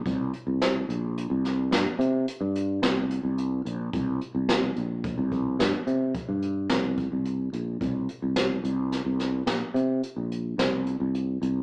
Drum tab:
HH |xxxxxxxxxxxxxx|xxxxxxxxxxxxxx|xxxxxxxxxxxxxx|
SD |--o--oo---o---|--o---o---o---|--o-ooo---o---|
BD |o-------------|o---oo--o--o--|o-------------|